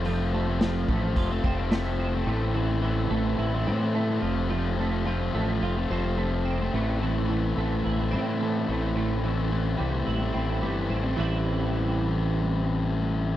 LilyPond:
<<
  \new Staff \with { instrumentName = "Clean electric guitar" } { \time 4/4 \key a \minor \tempo 4 = 108 f8 a8 f8 a8 f'8 c'8 a8 c'8 | a,8 e8 e8 a8 e'8 c'8 a8 f8 | f8 a8 f8 a8 f'8 c'8 a8 c'8 | a,8 e8 e8 a8 e'8 c'8 a8 a,8 |
a,8 e8 e8 g8 e'8 c'8 g8 c'8 | <a, e g c' e'>1 | }
  \new Staff \with { instrumentName = "Distorted electric guitar" } { \time 4/4 \key a \minor <f a c'>8 <f a c'>16 <a c'>16 <f a c'>8 <f a c'>16 <a c'>8 <a c'>16 <f a c'>16 <a c'>16 <f a c'>16 <a c'>8 <a c'>16 | <e a c'>8 <e a c'>16 <a c'>16 <e a c'>8 <e a c'>16 <a c'>8 <a c'>16 <e a c'>16 <a c'>16 <e a c'>16 <a c'>16 <f a c'>16 <a c'>16 | <f a c'>8 <f a c'>16 <a c'>16 <f a c'>8 <f a c'>16 <a c'>8 <a c'>16 <f a c'>16 <a c'>16 <f a c'>16 <a c'>8 <a c'>16 | <e a c'>8 <e a c'>16 <a c'>16 <e a c'>8 <e a c'>16 <a c'>8 <a c'>16 <e a c'>16 <a c'>16 <e a c'>16 <a c'>16 <e a c'>16 <a c'>16 |
<e a c'>8 <e a c'>16 <a c'>16 <e a c'>8 <e a c'>16 <a c'>8 <a c'>16 <e a c'>16 <a c'>16 <e a c'>16 <a c'>8 <a c'>16 | <e a c'>1 | }
  \new Staff \with { instrumentName = "Fingered electric bass" } { \clef bass \time 4/4 \key a \minor f,,4. a,,8 f,,8 f,,4. | a,,4. a,,8 a,,8 a,4 f,,8~ | f,,4. a,,8 f,,8 f,,4. | a,,4. a,,8 a,,8 a,4 a,,8~ |
a,,4. c,8 a,,8 a,,8 g,,8 a,,8 | a,,1 | }
  \new DrumStaff \with { instrumentName = "Drums" } \drummode { \time 4/4 hho4 <hho sn>8 bd8 <hho bd>8 bd8 <hho sn>4 | r4 r4 r4 r4 | r4 r4 r4 r4 | r4 r4 r4 r4 |
r4 r4 r4 r4 | r4 r4 r4 r4 | }
>>